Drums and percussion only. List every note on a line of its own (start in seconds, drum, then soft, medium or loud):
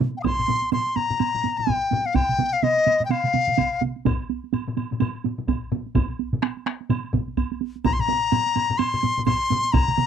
0.00 taiko low-mid medium
0.00 taiko mid loud
0.00 taiko high soft
0.15 taiko high soft
0.24 taiko medium
0.24 taiko low-mid medium
0.24 taiko high medium
0.24 high woodblock soft
0.39 taiko low-mid medium
0.39 taiko high soft
0.48 taiko low-mid medium
0.48 taiko high medium
0.62 taiko high soft
0.72 taiko low-mid medium
0.72 taiko high medium
0.72 high woodblock soft
0.87 taiko high soft
0.96 taiko low-mid medium
0.96 taiko high soft
0.96 high woodblock soft
1.10 taiko low-mid medium
1.10 taiko high soft
1.20 taiko low-mid medium
1.20 taiko high medium
1.20 high woodblock soft
1.34 taiko low-mid medium
1.34 taiko high soft
1.44 taiko low-mid medium
1.44 taiko high soft
1.58 taiko low-mid medium
1.58 taiko high soft
1.67 taiko soft
1.67 taiko low-mid medium
1.67 taiko high medium
1.67 high woodblock soft
1.91 taiko low-mid medium
1.91 taiko high soft
2.05 taiko high soft
2.15 taiko medium
2.15 taiko mid medium
2.15 taiko high medium
2.15 high woodblock soft
2.29 taiko mid medium
2.29 taiko high soft
2.38 taiko mid medium
2.38 taiko high medium
2.54 taiko high soft
2.63 taiko mid medium
2.63 taiko high medium
2.63 high woodblock soft
2.77 taiko high soft
2.86 taiko mid medium
2.86 taiko high soft
2.86 high woodblock soft
3.00 taiko mid medium
3.00 taiko high soft
3.09 taiko mid medium
3.09 taiko high medium
3.09 high woodblock soft
3.24 taiko mid medium
3.24 taiko high soft
3.34 taiko mid medium
3.34 taiko high medium
3.47 taiko mid medium
3.47 taiko high soft
3.58 taiko medium
3.58 taiko mid medium
3.58 taiko high medium
3.58 high woodblock soft
3.82 taiko mid medium
3.82 taiko high medium
3.96 taiko high soft
4.05 taiko medium
4.05 taiko low-mid loud
4.05 taiko high medium
4.05 high woodblock medium
4.20 taiko high soft
4.30 taiko high medium
4.44 taiko high soft
4.53 taiko low-mid medium
4.53 taiko high medium
4.53 high woodblock soft
4.68 taiko low-mid medium
4.68 taiko high soft
4.77 taiko low-mid medium
4.77 taiko high medium
4.77 high woodblock soft
4.91 taiko low-mid medium
4.91 taiko high soft
5.00 taiko low-mid medium
5.00 taiko high medium
5.00 high woodblock soft
5.15 taiko high soft
5.24 taiko low-mid medium
5.24 taiko high medium
5.38 taiko low-mid medium
5.38 taiko high soft
5.48 taiko medium
5.48 taiko low-mid medium
5.48 taiko high medium
5.48 high woodblock soft
5.72 taiko low-mid medium
5.72 taiko high medium
5.86 taiko high soft
5.95 taiko medium
5.95 taiko low-mid medium
5.95 taiko mid medium
5.95 taiko high medium
5.95 high woodblock soft
6.10 taiko high soft
6.19 taiko high medium
6.33 taiko low-mid medium
6.33 taiko mid medium
6.33 taiko high soft
6.42 taiko rim medium
6.42 taiko high medium
6.42 high woodblock soft
6.57 taiko high soft
6.66 taiko rim medium
6.66 taiko high soft
6.81 taiko high soft
6.90 taiko low-mid medium
6.90 taiko mid medium
6.90 taiko high medium
6.90 high woodblock soft
7.04 taiko high soft
7.13 taiko medium
7.13 taiko low-mid medium
7.13 taiko mid medium
7.13 taiko high medium
7.28 taiko high soft
7.37 taiko medium
7.37 taiko high medium
7.37 high woodblock soft
7.52 taiko high soft
7.61 taiko high medium
7.76 taiko high soft
7.84 taiko loud
7.84 taiko low-mid medium
7.84 taiko high medium
7.84 high woodblock medium
7.99 taiko low-mid medium
7.99 taiko high soft
8.08 taiko low-mid medium
8.08 taiko high medium
8.32 taiko low-mid medium
8.32 taiko high medium
8.32 high woodblock soft
8.46 taiko high soft
8.56 taiko low-mid medium
8.56 taiko high medium
8.56 high woodblock soft
8.70 taiko low-mid medium
8.70 taiko high soft
8.79 taiko low-mid medium
8.79 taiko high medium
8.79 high woodblock medium
8.93 taiko low-mid medium
8.93 taiko high soft
9.03 taiko low-mid medium
9.03 taiko high medium
9.17 taiko low-mid medium
9.17 taiko high soft
9.26 taiko medium
9.26 taiko low-mid medium
9.26 taiko high medium
9.26 high woodblock soft
9.50 taiko low-mid medium
9.50 taiko high medium
9.64 taiko high soft
9.74 taiko loud
9.74 taiko mid medium
9.74 taiko high medium
9.74 high woodblock medium
9.88 taiko mid medium
9.88 taiko high soft
9.98 taiko mid medium
9.98 taiko high medium